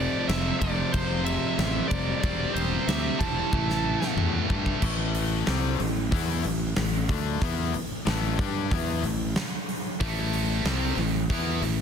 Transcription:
0.00 0.59 F2 medium
0.00 0.60 C3 medium
0.00 0.59 F3 loud
0.00 0.27 A3 medium
0.00 0.28 D5 medium
0.28 0.50 F1 medium
0.28 0.59 C4 medium
0.28 0.60 E5 medium
0.28 snare loud
0.28 ride loud
0.59 0.82 F1 medium
0.59 1.57 C3 medium
0.59 1.56 F3 medium
0.59 0.90 A3 medium
0.59 0.91 D5 medium
0.59 kick loud
0.59 ride medium
0.64 1.56 F2 medium
0.92 1.36 F1 loud
0.92 1.23 F3 medium
0.92 1.23 C5 medium
0.92 kick loud
0.92 ride loud
1.23 1.85 C4 medium
1.23 1.88 E5 loud
1.23 ride medium
1.58 1.80 A1 medium
1.58 2.21 F2 medium
1.58 2.21 C3 medium
1.58 snare loud
1.58 ride loud
1.62 2.23 F3 medium
1.88 2.12 F1 medium
1.88 2.50 G3 medium
1.88 2.56 D5 medium
1.88 kick medium
1.88 ride medium
2.22 2.45 E1 loud
2.22 3.18 C3 medium
2.22 3.19 G3 loud
2.22 3.18 C4 loud
2.22 kick loud
2.22 ride loud
2.53 2.76 E1 medium
2.53 2.84 G3 medium
2.53 2.88 C5 medium
2.53 ride medium
2.85 3.09 D2 medium
2.85 3.16 C4 medium
2.85 3.21 E5 medium
2.85 ride loud
2.89 snare loud
3.18 3.42 E1 loud
3.18 3.51 G3 medium
3.18 3.50 C4 medium
3.18 4.12 E4 medium
3.18 4.13 A5 loud
3.18 kick loud
3.18 ride medium
3.23 3.51 C3 medium
3.52 3.96 A1 loud
3.52 4.48 A2 medium
3.52 4.49 E3 medium
3.52 4.47 A3 loud
3.52 kick loud
3.52 high tom medium
3.70 snare medium
4.02 snare medium
4.16 4.38 E2 medium
4.16 mid tom medium
4.48 4.71 G2 medium
4.48 4.81 A2 medium
4.48 4.81 E3 medium
4.48 4.80 A3 medium
4.48 kick loud
4.66 kick loud
4.82 5.43 A1 loud
4.82 5.46 A2 loud
4.82 5.47 E3 medium
4.82 5.47 A3 loud
4.82 kick loud
4.82 crash loud
5.15 open hi-hat medium
5.47 5.77 C2 medium
5.47 5.79 C3 medium
5.47 5.79 G3 medium
5.47 5.79 C4 loud
5.47 snare loud
5.47 open hi-hat medium
5.80 6.10 A1 medium
5.80 6.06 A2 medium
5.80 6.06 E3 medium
5.80 open hi-hat medium
6.11 6.42 E2 loud
6.11 6.43 E3 loud
6.11 6.44 B3 loud
6.11 6.44 E4 loud
6.11 kick loud
6.11 open hi-hat medium
6.44 6.75 A1 medium
6.44 6.70 A2 medium
6.44 6.71 E3 medium
6.44 open hi-hat medium
6.76 7.07 A1 medium
6.76 7.03 A2 medium
6.76 7.03 E3 medium
6.76 snare loud
6.76 open hi-hat medium
7.09 7.39 D2 medium
7.09 7.41 D3 loud
7.09 7.41 A3 loud
7.09 7.41 D4 loud
7.09 kick loud
7.09 open hi-hat medium
7.42 7.72 E2 loud
7.42 7.73 E3 medium
7.42 7.74 B3 loud
7.42 7.74 E4 loud
7.42 kick loud
7.42 open hi-hat medium
7.74 muted overdriven electric guitar stroke medium
7.74 muted fingered electric bass stroke soft
7.74 open hi-hat medium
8.06 8.37 A1 medium
8.06 8.38 A2 medium
8.06 8.38 E3 loud
8.06 8.38 A3 medium
8.06 snare loud
8.06 open hi-hat medium
8.39 8.69 G2 loud
8.39 8.70 G3 medium
8.39 8.71 D4 loud
8.39 8.71 G4 loud
8.39 kick loud
8.39 open hi-hat medium
8.71 9.02 E2 loud
8.71 9.03 E3 medium
8.71 9.03 B3 medium
8.71 9.03 E4 loud
8.71 kick loud
8.71 open hi-hat medium
9.03 9.34 A1 medium
9.03 9.30 A2 medium
9.03 9.30 E3 medium
9.03 open hi-hat medium
9.36 snare loud
9.36 open hi-hat medium
9.69 open hi-hat medium
10.00 10.62 A1 loud
10.00 10.64 A2 medium
10.00 10.65 E3 loud
10.00 10.65 A3 loud
10.00 kick loud
10.00 open hi-hat medium
10.33 open hi-hat medium
10.64 10.95 C2 medium
10.64 10.97 C3 medium
10.64 10.98 G3 loud
10.64 10.98 C4 loud
10.64 snare loud
10.64 open hi-hat medium
10.97 11.28 A1 medium
10.97 11.24 A2 medium
10.97 11.24 E3 medium
10.97 open hi-hat medium
11.30 11.60 E2 loud
11.30 11.62 E3 loud
11.30 11.62 B3 loud
11.30 11.62 E4 loud
11.30 kick loud
11.30 open hi-hat medium
11.62 11.81 A1 medium
11.62 11.81 A2 medium
11.62 11.81 E3 medium
11.62 open hi-hat medium

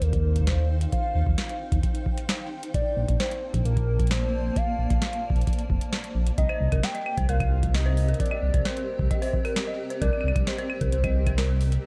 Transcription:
0.00 0.87 D#2 medium
0.00 2.74 D#4 medium
0.00 0.17 A4 medium
0.00 0.49 A#4 loud
0.00 8.14 C5 medium
0.00 0.43 D5 medium
0.00 3.55 F5 medium
0.00 closed hi-hat medium
0.13 kick loud
0.13 closed hi-hat soft
0.36 3.39 G5 medium
0.36 kick soft
0.36 closed hi-hat medium
0.41 kick medium
0.47 0.92 C5 medium
0.47 kick medium
0.47 snare loud
0.47 closed hi-hat medium
0.53 kick medium
0.81 closed hi-hat medium
0.92 1.57 F5 loud
0.92 kick loud
0.92 closed hi-hat medium
1.15 1.23 D#2 medium
1.27 1.34 D#2 loud
1.27 kick loud
1.38 snare loud
1.38 closed hi-hat medium
1.49 closed hi-hat soft
1.72 1.80 D#2 medium
1.72 kick loud
1.72 closed hi-hat medium
1.83 kick loud
1.83 closed hi-hat medium
1.95 closed hi-hat soft
2.06 kick loud
2.18 closed hi-hat medium
2.29 snare loud
2.29 closed hi-hat medium
2.63 closed hi-hat medium
2.74 2.82 A#1 medium
2.74 7.43 A#3 medium
2.74 3.17 D5 loud
2.74 kick loud
2.74 closed hi-hat medium
2.88 6.38 A5 medium
2.97 3.05 A#1 medium
3.08 3.16 A#1 loud
3.08 kick loud
3.08 closed hi-hat medium
3.20 3.62 C5 medium
3.20 snare loud
3.20 closed hi-hat medium
3.31 closed hi-hat soft
3.47 6.38 D5 medium
3.54 3.62 A#1 loud
3.54 kick loud
3.54 closed hi-hat medium
3.65 4.51 A#1 medium
3.65 4.08 A#4 loud
3.65 closed hi-hat medium
3.77 kick loud
3.77 closed hi-hat soft
3.99 kick loud
3.99 closed hi-hat soft
4.07 4.58 C5 loud
4.07 snare loud
4.07 closed hi-hat soft
4.11 closed hi-hat medium
4.15 closed hi-hat soft
4.56 5.24 F5 loud
4.56 kick loud
4.56 closed hi-hat medium
4.79 4.87 A#1 medium
4.90 4.98 A#1 loud
4.90 kick loud
4.90 closed hi-hat medium
5.02 snare loud
5.02 closed hi-hat medium
5.13 closed hi-hat soft
5.30 kick loud
5.36 5.44 A#1 loud
5.36 closed hi-hat soft
5.41 closed hi-hat soft
5.47 kick loud
5.47 closed hi-hat medium
5.53 closed hi-hat soft
5.59 closed hi-hat soft
5.70 5.78 F1 medium
5.70 kick loud
5.81 closed hi-hat soft
5.93 snare loud
5.93 closed hi-hat medium
6.04 closed hi-hat soft
6.15 6.31 A#1 medium
6.27 closed hi-hat soft
6.38 6.46 C2 medium
6.38 11.86 C4 medium
6.38 6.42 D#5 medium
6.38 6.85 D#5 loud
6.38 kick loud
6.38 closed hi-hat medium
6.49 6.59 C5 medium
6.49 claves medium
6.56 11.86 A#4 medium
6.61 6.69 C2 medium
6.61 11.86 G4 medium
6.72 6.80 C2 medium
6.72 6.76 A#4 medium
6.72 kick medium
6.72 closed hi-hat soft
6.72 claves medium
6.76 kick medium
6.80 7.30 G5 loud
6.80 kick medium
6.80 snare loud
6.80 closed hi-hat medium
6.95 7.01 D#5 medium
6.95 closed hi-hat soft
7.06 claves medium
7.18 7.25 C2 loud
7.18 7.22 C5 medium
7.18 kick loud
7.18 closed hi-hat medium
7.29 8.14 C2 loud
7.29 7.39 A#4 loud
7.29 7.74 F5 loud
7.29 closed hi-hat medium
7.40 kick loud
7.40 closed hi-hat soft
7.40 claves medium
7.63 kick loud
7.63 closed hi-hat soft
7.74 7.78 D#5 medium
7.74 8.17 D#5 medium
7.74 snare loud
7.74 open hi-hat medium
7.86 7.96 C5 loud
7.97 open hi-hat medium
8.08 8.12 A#4 medium
8.08 closed hi-hat soft
8.14 closed hi-hat soft
8.20 8.67 D5 loud
8.20 kick loud
8.20 closed hi-hat medium
8.26 closed hi-hat soft
8.31 8.38 D#5 medium
8.31 claves medium
8.43 8.50 C2 medium
8.54 8.62 C2 loud
8.54 8.58 C5 medium
8.54 kick loud
8.54 closed hi-hat soft
8.65 8.75 A#4 medium
8.65 9.34 C5 medium
8.65 snare loud
8.65 closed hi-hat medium
8.77 closed hi-hat soft
8.99 9.07 C2 loud
8.99 kick loud
9.11 9.15 D#5 medium
9.11 kick loud
9.11 closed hi-hat medium
9.22 9.32 C5 loud
9.22 open hi-hat medium
9.33 kick medium
9.45 9.49 A#4 medium
9.45 open hi-hat medium
9.45 claves medium
9.56 snare loud
9.56 closed hi-hat medium
9.67 9.74 D#5 medium
9.90 9.94 C5 medium
9.90 closed hi-hat soft
10.01 10.10 C2 loud
10.01 10.12 A#4 loud
10.01 10.49 D5 loud
10.01 kick loud
10.01 closed hi-hat medium
10.13 claves soft
10.21 10.32 C2 medium
10.21 claves soft
10.28 claves medium
10.36 10.44 C2 loud
10.36 kick loud
10.36 closed hi-hat medium
10.36 claves medium
10.47 10.92 C5 loud
10.47 10.51 D#5 medium
10.47 snare loud
10.47 closed hi-hat medium
10.58 10.68 C5 loud
10.58 closed hi-hat soft
10.70 claves medium
10.81 10.89 C2 loud
10.81 10.85 A#4 medium
10.81 kick loud
10.81 closed hi-hat medium
10.92 11.78 C2 medium
10.92 11.79 C5 loud
10.92 closed hi-hat medium
11.04 11.11 D#5 medium
11.04 kick loud
11.04 closed hi-hat soft
11.04 claves medium
11.27 11.31 C5 medium
11.27 kick loud
11.27 closed hi-hat soft
11.27 claves medium
11.38 11.48 A#4 medium
11.38 snare loud
11.38 open hi-hat medium
11.61 open hi-hat medium
11.72 closed hi-hat medium

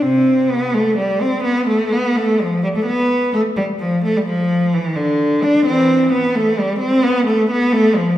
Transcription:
0.02 0.47 C3 medium
0.02 0.50 C4 medium
0.50 0.74 B3 medium
0.74 0.98 A3 medium
0.97 1.21 G3 medium
1.21 1.45 C4 medium
1.44 1.67 B3 medium
1.68 1.91 A3 medium
1.92 2.15 B3 medium
2.16 2.39 A3 medium
2.41 2.63 F3 medium
2.63 2.68 G3 medium
2.76 2.86 A3 medium
2.86 3.32 B3 medium
3.33 3.41 A3 medium
3.57 3.65 G3 medium
3.79 4.02 F3 medium
4.03 4.14 A3 medium
4.17 4.27 G3 medium
4.26 4.71 F3 medium
4.73 4.96 E3 medium
4.95 5.42 D3 medium
5.43 5.66 D4 medium
5.66 6.10 E3 medium
5.66 6.12 C4 medium
6.13 6.35 B3 medium
6.35 6.58 A3 medium
6.58 6.81 G3 medium
6.80 7.03 C4 medium
7.03 7.27 B3 medium
7.27 7.50 A3 medium
7.51 7.73 B3 medium
7.73 7.95 A3 medium
7.95 8.18 F3 medium

